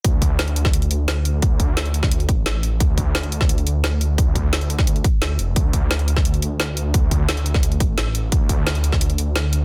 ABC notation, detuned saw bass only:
X:1
M:4/4
L:1/8
Q:1/4=174
K:Cdor
V:1 name="Detuned saw bass" clef=bass
D,,2 D,,3 D,,3 | D,,2 D,,3 A,,,3 | D,,2 D,,3 D,,3 | D,,2 D,,3 z D,, F,,, |
D,,2 D,,3 D,,3 | D,,2 D,,3 A,,,3 | D,,2 D,,3 D,,3 |]